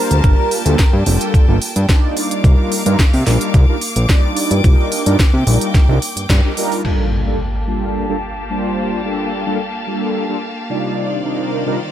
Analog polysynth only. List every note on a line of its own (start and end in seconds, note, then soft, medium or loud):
0.00 0.21 G3 medium
0.00 0.21 A#3 medium
0.00 0.21 D4 medium
0.00 0.21 F4 medium
0.00 0.21 C5 medium
0.23 0.62 G3 medium
0.23 0.62 A#3 medium
0.23 0.63 A#4 medium
0.65 0.76 G3 loud
0.65 0.76 A#3 medium
0.65 0.77 D4 medium
0.65 0.77 F4 medium
0.65 0.77 A4 loud
1.06 1.45 G3 medium
1.06 1.45 A#3 medium
1.06 1.45 D4 medium
1.06 1.45 F4 medium
1.06 1.45 A4 medium
1.48 1.55 G3 medium
1.48 1.55 A#3 medium
1.48 1.55 D4 medium
1.48 1.55 F4 medium
1.48 1.55 A4 loud
1.89 2.41 G3 medium
1.89 2.41 D4 medium
1.89 2.41 D#4 medium
1.89 2.41 F4 medium
1.89 2.41 D5 medium
2.44 2.82 G3 medium
2.44 2.82 D4 medium
2.44 2.83 D#4 medium
2.44 2.83 F4 medium
2.44 2.83 A#4 medium
2.85 2.96 G3 loud
2.85 2.96 D4 medium
2.85 2.97 D#4 medium
2.85 2.97 F4 medium
2.85 2.97 A#4 loud
3.26 3.65 G3 medium
3.26 3.65 D4 medium
3.26 3.65 D#4 medium
3.26 3.65 F4 medium
3.26 3.65 A#4 medium
3.68 3.75 G3 medium
3.68 3.75 D4 medium
3.68 3.75 D#4 medium
3.68 3.75 F4 medium
3.68 3.75 A#4 loud
4.09 4.61 G3 medium
4.09 4.61 D4 medium
4.09 4.61 D#4 medium
4.09 4.61 F4 medium
4.09 4.61 D5 medium
4.64 5.02 G3 medium
4.64 5.03 D4 medium
4.64 5.03 D#4 medium
4.64 5.03 F4 medium
4.64 5.03 A#4 medium
5.06 5.17 G3 medium
5.06 5.17 D4 medium
5.06 5.17 D#4 medium
5.06 5.17 F4 medium
5.06 5.17 A#4 loud
5.47 5.85 G3 medium
5.47 5.85 D4 medium
5.47 5.85 D#4 medium
5.47 5.86 F4 medium
5.47 5.86 A#4 medium
5.88 5.95 G3 medium
5.88 5.95 D4 medium
5.88 5.96 D#4 medium
5.88 5.96 F4 medium
5.88 5.96 A#4 loud
6.44 6.50 G3 loud
6.44 6.51 D4 medium
6.44 6.51 D#4 medium
6.44 6.51 F4 medium
6.44 6.51 A#4 loud
6.57 6.81 G3 loud
6.57 6.81 D4 medium
6.57 6.82 D#4 medium
6.57 6.82 F4 medium
6.57 6.82 A#4 loud
6.85 7.23 G3 medium
6.85 7.23 A#3 medium
6.85 7.23 D4 medium
6.85 7.23 F4 medium
6.85 7.24 A4 medium
7.27 7.37 G3 medium
7.27 7.37 A#3 medium
7.27 7.37 D4 medium
7.27 7.37 F4 medium
7.27 7.38 A4 loud
7.67 8.05 G3 medium
7.67 8.06 A#3 medium
7.67 8.06 D4 medium
7.67 8.06 F4 medium
7.67 8.06 A4 medium
8.09 8.15 G3 medium
8.09 8.16 A#3 medium
8.09 8.16 D4 medium
8.09 8.16 F4 medium
8.09 8.16 A4 medium
8.50 9.02 G3 medium
8.50 9.02 A#3 medium
8.50 9.02 D4 medium
8.50 9.02 F4 medium
8.50 9.02 C5 medium
9.04 9.43 G3 medium
9.04 9.43 A#3 medium
9.04 9.43 D4 medium
9.04 9.43 F4 medium
9.04 9.44 A4 medium
9.46 9.57 G3 medium
9.46 9.57 A#3 medium
9.46 9.57 D4 medium
9.46 9.57 F4 medium
9.46 9.58 A4 loud
9.87 10.26 G3 medium
9.87 10.26 A#3 medium
9.87 10.26 D4 medium
9.87 10.26 F4 medium
9.87 10.26 A4 medium
10.29 10.36 G3 medium
10.29 10.36 A#3 medium
10.29 10.36 D4 medium
10.29 10.36 F4 medium
10.29 10.36 A4 loud
10.69 11.21 C3 medium
10.69 11.22 G3 medium
10.69 11.22 D4 medium
10.69 11.22 D#4 medium
10.69 11.22 F4 medium
10.69 11.22 D5 medium
11.24 11.63 C3 medium
11.24 11.63 G3 medium
11.24 11.63 D4 medium
11.24 11.63 D#4 medium
11.24 11.64 F4 medium
11.24 11.64 A#4 medium
11.66 11.77 C3 medium
11.66 11.77 G3 medium
11.66 11.77 D4 medium
11.66 11.77 D#4 medium
11.66 11.77 F4 medium
11.66 11.78 A#4 loud